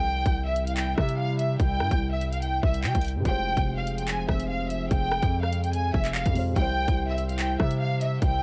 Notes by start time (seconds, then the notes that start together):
Already playing: C2 C3 G3 E4 G5
0.26 C2, kick, closed hi-hat
0.47 E5
0.56 closed hi-hat
0.67 F5, closed hi-hat
0.76 G5, clap, closed hi-hat
0.98 C3 E5, kick, cross-stick
1.09 closed hi-hat
1.18 F5
1.39 E5, closed hi-hat
1.59 C2 G5, kick, closed hi-hat
1.80 G2, cross-stick
1.91 C2, kick, closed hi-hat
2.12 E5
2.22 closed hi-hat
2.32 F5, closed hi-hat
2.42 G5, closed hi-hat
2.63 C2 E5, kick
2.74 closed hi-hat
2.84 C3 G5, clap
2.95 C2, kick, closed hi-hat
3.01 closed hi-hat, open hi-hat
3.08 closed hi-hat
3.15 G2
3.20 C3 G#3
3.25 F1 F3 C4 F4 G#4 G5, kick, closed hi-hat
3.30 C5
3.57 F1, kick, closed hi-hat
3.78 F5
3.87 closed hi-hat
3.98 G5, closed hi-hat
4.08 G#5, clap, closed hi-hat
4.29 F1 E5, kick, cross-stick
4.40 closed hi-hat
4.49 F5
4.70 E5, closed hi-hat
4.91 F1 G5, kick, closed hi-hat
5.11 cross-stick
5.22 F2, kick, closed hi-hat
5.42 F5, cross-stick
5.53 closed hi-hat
5.64 G5, closed hi-hat
5.73 G#5, closed hi-hat
5.94 F1 E5, kick
6.05 clap, closed hi-hat
6.15 F5, clap
6.26 F2, kick, closed hi-hat
6.33 C3 G#3 F4, open hi-hat
6.38 C5
6.51 C3 G3
6.56 C2 C3 G3 E4 G5, kick, closed hi-hat
6.61 C5
6.88 C2, kick, closed hi-hat
7.09 E5
7.18 closed hi-hat
7.29 F5, closed hi-hat
7.39 G5, clap, closed hi-hat
7.60 C3 E5, kick, cross-stick
7.71 closed hi-hat
7.80 F5
8.01 E5, closed hi-hat
8.21 C2 G5, kick, closed hi-hat